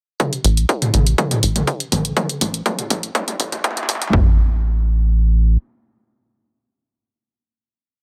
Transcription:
0.20 kick, closed hi-hat, mid tom
0.33 closed hi-hat
0.44 analog synth bass A1, open hi-hat
0.57 closed hi-hat
0.69 kick, closed hi-hat
0.82 closed hi-hat, mid tom
0.94 analog synth bass A1, open hi-hat, mid tom
1.07 closed hi-hat
1.18 kick, closed hi-hat, mid tom
1.31 closed hi-hat, mid tom
1.43 analog synth bass A1, open hi-hat
1.56 closed hi-hat, mid tom
1.67 kick, closed hi-hat
1.80 closed hi-hat
1.92 analog synth bass A1, open hi-hat, mid tom
2.05 closed hi-hat
2.17 kick, closed hi-hat, mid tom
2.29 closed hi-hat
2.41 analog synth bass A1, open hi-hat, mid tom
2.54 closed hi-hat
2.66 kick, closed hi-hat, mid tom
2.79 closed hi-hat, mid tom
2.90 analog synth bass A1, open hi-hat, mid tom
3.03 closed hi-hat
3.15 kick, closed hi-hat, mid tom
3.28 closed hi-hat, mid tom
3.40 analog synth bass A1, open hi-hat, mid tom
3.52 closed hi-hat, mid tom
3.64 kick, closed hi-hat, mid tom
3.71 mid tom
3.77 closed hi-hat, mid tom
3.83 mid tom
3.89 analog synth bass A1, open hi-hat, mid tom
3.95 mid tom
4.02 closed hi-hat, mid tom
4.07 mid tom
4.13 analog synth bass A1, kick, floor tom

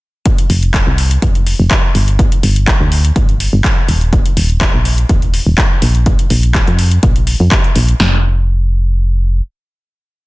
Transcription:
0.26 kick, closed hi-hat
0.38 closed hi-hat
0.50 fm bass F1, open hi-hat
0.63 closed hi-hat
0.74 kick, clap, closed hi-hat
0.87 fm bass C2
0.98 open hi-hat
1.11 closed hi-hat
1.22 fm bass F1, kick, closed hi-hat
1.35 closed hi-hat
1.47 open hi-hat
1.60 fm bass F1
1.71 kick, clap, closed hi-hat
1.95 fm bass G1, open hi-hat
2.08 closed hi-hat
2.19 kick, closed hi-hat
2.32 closed hi-hat
2.43 fm bass G1, open hi-hat
2.56 closed hi-hat
2.67 kick, clap, closed hi-hat
2.80 fm bass D2
2.92 open hi-hat
3.05 closed hi-hat
3.16 fm bass G1, kick, closed hi-hat
3.29 closed hi-hat
3.40 open hi-hat
3.53 fm bass G1
3.64 kick, clap, closed hi-hat
3.89 fm bass D#1, open hi-hat
4.01 closed hi-hat
4.13 kick, closed hi-hat
4.26 closed hi-hat
4.37 fm bass D#1, open hi-hat
4.50 closed hi-hat
4.61 kick, clap, closed hi-hat
4.74 fm bass A#1
4.85 open hi-hat
4.98 closed hi-hat
5.09 fm bass D#1, kick, closed hi-hat
5.22 closed hi-hat
5.34 open hi-hat
5.46 fm bass D#1
5.58 kick, clap, closed hi-hat
5.82 fm bass A#1, open hi-hat
5.95 closed hi-hat
6.06 kick, closed hi-hat
6.19 closed hi-hat
6.30 fm bass A#1, open hi-hat
6.43 closed hi-hat
6.55 kick, clap, closed hi-hat
6.67 fm bass F2, closed hi-hat
6.79 open hi-hat
6.91 closed hi-hat
7.03 fm bass A#1, kick, closed hi-hat
7.16 closed hi-hat
7.27 open hi-hat
7.40 fm bass F2
7.51 kick, clap, closed hi-hat
7.64 closed hi-hat
7.76 fm bass A#1, open hi-hat
7.88 closed hi-hat
8.00 fm bass F1, snare

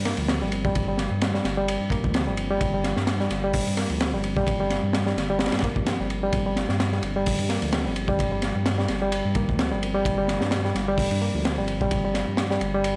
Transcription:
Already playing: detuned saw bass G2, reed electric piano G3
0.05 reed electric piano A#3, snare, ride
0.17 detuned saw bass D2, reed electric piano F3, ride
0.28 reed electric piano C4, snare, ride
0.41 detuned saw bass G1, reed electric piano G3
0.52 ride
0.65 reed electric piano G3, kick
0.75 detuned saw bass G1, kick, ride
0.88 reed electric piano G3
0.98 snare, ride
1.11 detuned saw bass G2
1.21 snare, ride
1.34 reed electric piano G3, snare
1.45 detuned saw bass G1, snare, ride
1.57 reed electric piano G3
1.68 ride
1.81 detuned saw bass G2
1.90 reed electric piano A#3, kick, ride
2.04 detuned saw bass D2, reed electric piano F3, kick
2.14 reed electric piano C4, snare, ride
2.27 detuned saw bass G1, reed electric piano G3
2.37 ride
2.51 reed electric piano G3
2.61 detuned saw bass G1, kick, ride
2.74 reed electric piano G3
2.84 snare, ride
2.96 detuned saw bass G2, snare
3.07 snare, ride
3.20 reed electric piano G3, snare
3.30 detuned saw bass G1, snare, ride
3.44 reed electric piano G3
3.53 kick, open hi-hat
3.67 detuned saw bass G2, ride
3.77 reed electric piano A#3, snare, ride
3.90 detuned saw bass D2, reed electric piano F3, ride
4.00 reed electric piano C4, snare, ride
4.13 detuned saw bass G1, reed electric piano G3
4.24 ride
4.36 reed electric piano G3, kick
4.47 detuned saw bass G1, kick, ride
4.60 reed electric piano G3
4.70 snare, ride
4.83 detuned saw bass G2
4.93 snare, ride
5.06 reed electric piano G3, snare
5.17 detuned saw bass G1, snare, ride
5.30 reed electric piano G3
5.39 snare, ride
5.46 snare, ride
5.52 detuned saw bass G2, snare, ride
5.59 kick, snare, ride
5.64 reed electric piano A#3, ride
5.76 detuned saw bass G2, reed electric piano F3, kick
5.86 reed electric piano C4, snare, ride
6.00 detuned saw bass G1, reed electric piano G3
6.10 ride
6.23 reed electric piano G3
6.33 detuned saw bass G1, kick, ride
6.46 reed electric piano G3
6.56 snare, ride
6.69 detuned saw bass G2, snare
6.80 snare, ride
6.92 reed electric piano G3, snare
7.03 detuned saw bass G1, ride
7.16 reed electric piano G3
7.26 kick, open hi-hat
7.39 detuned saw bass G2, ride
7.49 reed electric piano A#3, snare, ride
7.62 detuned saw bass D2, reed electric piano F3, ride
7.72 reed electric piano C4, snare, ride
7.85 detuned saw bass G1, reed electric piano G3
7.96 ride
8.08 reed electric piano G3, kick
8.19 detuned saw bass G1, kick, ride
8.32 reed electric piano G3
8.42 snare, ride
8.55 detuned saw bass G2
8.66 snare, ride
8.78 reed electric piano G3, snare
8.88 detuned saw bass G1, snare, ride
9.02 reed electric piano G3
9.12 ride
9.25 detuned saw bass G2
9.35 reed electric piano A#3, kick, ride
9.48 detuned saw bass D2, reed electric piano F3, kick
9.59 reed electric piano C4, snare, ride
9.71 detuned saw bass G1, reed electric piano G3
9.83 ride
9.95 reed electric piano G3
10.05 detuned saw bass G1, kick, ride
10.18 reed electric piano G3
10.28 snare, ride
10.41 detuned saw bass G2, snare
10.51 snare, ride
10.65 reed electric piano G3, snare
10.75 detuned saw bass G1, snare, ride
10.88 reed electric piano G3
10.98 kick, open hi-hat
11.11 detuned saw bass G2, ride
11.22 reed electric piano A#3
11.34 detuned saw bass D2, reed electric piano F3
11.45 reed electric piano C4, snare, ride
11.58 detuned saw bass G1, reed electric piano G3
11.68 ride
11.81 reed electric piano G3, kick
11.91 detuned saw bass G1, kick, ride
12.05 reed electric piano G3
12.14 snare, ride
12.27 detuned saw bass G2
12.37 snare, ride
12.50 reed electric piano G3, snare
12.61 detuned saw bass G1, ride
12.74 reed electric piano G3
12.84 ride

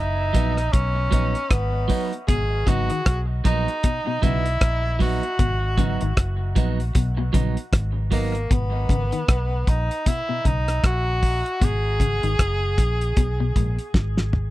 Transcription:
Already playing: fingered electric bass F#1, tenor saxophone D#4
0.33 fingered electric bass A#1, clean electric guitar F#3 B3 D#4, kick, closed hi-hat
0.57 cross-stick, closed hi-hat
0.72 fingered electric bass B1, tenor saxophone C#4, kick, closed hi-hat
0.95 muted clean electric guitar stroke
1.11 fingered electric bass A#1, clean electric guitar F#3 B3 D#4, kick, closed hi-hat
1.35 closed hi-hat
1.50 fingered electric bass G#1, tenor saxophone B3, kick, cross-stick, closed hi-hat
1.88 clean electric guitar F#3 B3 D#4, kick, open hi-hat
2.13 closed hi-hat
2.28 fingered electric bass G#1, clean electric guitar B2, tenor saxophone G#4, kick, closed hi-hat
2.66 fingered electric bass G#1, clean electric guitar C#3 F#3 B3 D#4, tenor saxophone F#4, kick, closed hi-hat
2.90 clean electric guitar D#3, closed hi-hat
3.06 fingered electric bass B1, kick, cross-stick, closed hi-hat
3.44 fingered electric bass A#1, clean electric guitar F#3 B3 D#4, tenor saxophone D#4, kick, closed hi-hat
3.68 closed hi-hat
3.83 clean electric guitar B2, kick, closed hi-hat
4.06 clean electric guitar B2, muted clean electric guitar stroke
4.22 fingered electric bass B1, clean electric guitar C#3 F#3 B3 D#4, tenor saxophone E4, kick, closed hi-hat
4.46 closed hi-hat
4.61 fingered electric bass A#1, kick, cross-stick, closed hi-hat
4.99 clean electric guitar F#3 B3 D#4, tenor saxophone F#4, kick, open hi-hat
5.23 closed hi-hat
5.39 fingered electric bass G#1, clean electric guitar B2, kick, closed hi-hat
5.78 clean electric guitar C#3 F#3 B3 D#4, kick, closed hi-hat
6.01 fingered electric bass G#1, clean electric guitar D#3, closed hi-hat
6.17 fingered electric bass F#1, kick, cross-stick, closed hi-hat
6.56 fingered electric bass A#1, clean electric guitar F#3 B3 D#4, kick, closed hi-hat
6.80 closed hi-hat
6.95 fingered electric bass B1, clean electric guitar B2, kick, closed hi-hat
7.17 clean electric guitar B2, muted clean electric guitar stroke
7.33 fingered electric bass A#1, clean electric guitar C#3 F#3 B3 D#4, kick, closed hi-hat
7.57 closed hi-hat
7.73 fingered electric bass G#1, kick, cross-stick, closed hi-hat
8.11 clean electric guitar F#3 B3 D#4, tenor saxophone A#3, kick, open hi-hat
8.35 closed hi-hat
8.51 fingered electric bass G#1, clean electric guitar B2, tenor saxophone B3, kick, closed hi-hat
8.89 fingered electric bass G#1, clean electric guitar C#3, kick, closed hi-hat
9.12 clean electric guitar D#3, closed hi-hat
9.28 fingered electric bass B1, kick, cross-stick, closed hi-hat
9.67 fingered electric bass A#1, tenor saxophone D#4, kick, closed hi-hat
9.91 closed hi-hat
10.06 clean electric guitar B2, tenor saxophone E4, kick, closed hi-hat
10.29 clean electric guitar B2
10.45 fingered electric bass B1, clean electric guitar C#3, tenor saxophone D#4, kick, closed hi-hat
10.68 cross-stick, closed hi-hat
10.84 fingered electric bass A#1, tenor saxophone F#4, kick, cross-stick, closed hi-hat
11.23 kick, open hi-hat
11.46 closed hi-hat
11.61 fingered electric bass G#1, clean electric guitar B2, tenor saxophone G#4, kick, closed hi-hat
12.00 clean electric guitar C#3, kick, closed hi-hat
12.23 fingered electric bass G#1, clean electric guitar D#3, closed hi-hat
12.39 fingered electric bass F#1, kick, cross-stick, closed hi-hat
12.78 fingered electric bass A#1, kick, closed hi-hat
13.01 closed hi-hat
13.17 fingered electric bass B1, clean electric guitar B2, kick, closed hi-hat
13.40 clean electric guitar B2
13.56 fingered electric bass A#1, clean electric guitar G#2, kick, closed hi-hat
13.79 closed hi-hat
13.94 fingered electric bass G#1, kick, snare
14.17 snare
14.33 mid tom

